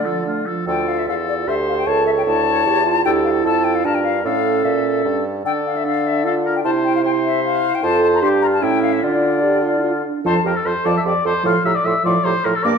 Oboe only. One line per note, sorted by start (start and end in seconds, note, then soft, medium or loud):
0.05 0.26 A4 soft
0.26 0.48 F4 soft
0.46 0.66 A4 soft
0.67 1.04 A4 soft
1.08 1.49 A4 soft
1.48 1.88 C5 soft
1.87 2.89 C#5 soft
3.06 3.44 A4 soft
3.46 3.84 A4 soft
3.85 4.24 A#4 soft
4.25 5.24 A4 soft
5.46 5.83 A4 soft
5.86 6.25 A4 soft
6.26 6.35 A4 soft
6.46 6.55 A#4 soft
6.65 7.03 C5 soft
7.04 7.81 C5 soft
7.83 8.25 C5 medium
8.23 8.45 G4 soft
8.43 8.64 F4 soft
8.63 9.02 E4 soft
9.03 10.03 F4 soft
10.26 10.35 C5 medium
10.45 10.57 A#4 soft
10.56 10.68 A4 soft
10.66 10.87 C5 medium
10.85 10.95 D5 medium
10.97 11.01 E5 medium
11.06 11.25 D5 medium
11.26 11.45 C5 medium
11.46 11.65 F5 medium
11.65 11.77 E5 medium
11.76 11.86 D5 medium
11.85 12.05 E5 medium
12.05 12.26 D5 medium
12.24 12.46 C5 medium
12.45 12.57 A#4 medium
12.55 12.65 A4 medium
12.64 12.78 D5 medium